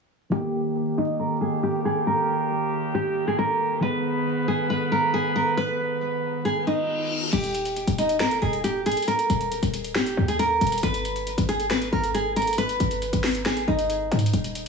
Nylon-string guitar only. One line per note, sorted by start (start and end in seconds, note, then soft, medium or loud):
0.32 0.94 G4 loud
0.98 1.14 D#4 medium
1.19 1.36 A#4 medium
1.41 1.58 G#4 medium
1.63 1.80 G4 medium
1.85 2.02 G#4 medium
2.07 2.91 A#4 loud
2.95 3.26 G4 medium
3.27 3.36 G#4 medium
3.38 3.80 A#4 loud
3.82 4.44 B4 loud
4.48 4.64 G#4 medium
4.70 4.86 B4 medium
4.92 5.08 A#4 medium
5.14 5.30 G#4 medium
5.36 5.52 A#4 medium
5.57 6.41 B4 loud
6.45 6.62 G#4 medium
6.67 7.29 D#4 medium
7.33 7.94 G4 loud
7.98 8.15 D#4 medium
8.20 8.37 A#4 loud
8.42 8.58 G#4 medium
8.64 8.80 G4 medium
8.86 9.02 G#4 medium
9.08 9.91 A#4 loud
9.95 10.26 G4 medium
10.28 10.37 G#4 medium
10.39 10.80 A#4 loud
10.83 11.45 B4 loud
11.49 11.65 G#4 medium
11.71 11.87 B4 loud
11.93 12.09 A#4 medium
12.14 12.31 G#4 medium
12.36 12.53 A#4 medium
12.58 13.42 B4 loud
13.46 13.62 G#4 medium
13.68 14.29 D#4 medium